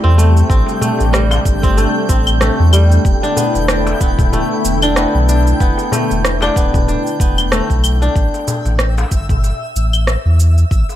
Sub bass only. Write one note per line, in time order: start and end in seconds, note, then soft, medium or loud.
0.04 0.43 E2 medium
0.50 0.62 A1 loud
1.00 1.39 A1 medium
1.46 1.86 G1 medium
2.09 2.50 A1 medium
2.60 2.98 E2 medium
3.05 3.17 E1 loud
3.55 3.94 E1 medium
4.01 4.42 D1 medium
4.65 5.06 E1 medium
5.15 5.54 B1 medium
5.61 5.73 E1 loud
6.11 6.50 E1 loud
6.56 6.97 D1 medium
7.20 7.61 E1 loud
7.70 8.09 B1 medium
8.15 8.28 A1 medium
8.65 9.04 A1 medium
9.12 9.52 G1 medium
9.76 10.16 A1 medium
10.25 10.64 E2 medium
10.71 10.84 A1 loud